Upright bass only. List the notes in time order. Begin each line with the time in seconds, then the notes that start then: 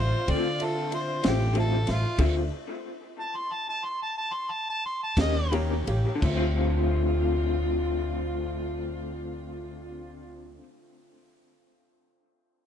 Already playing: A1
0.29 D3
1.25 A1
1.89 A1
2.19 D2
5.17 D#2
5.87 A1
6.22 D2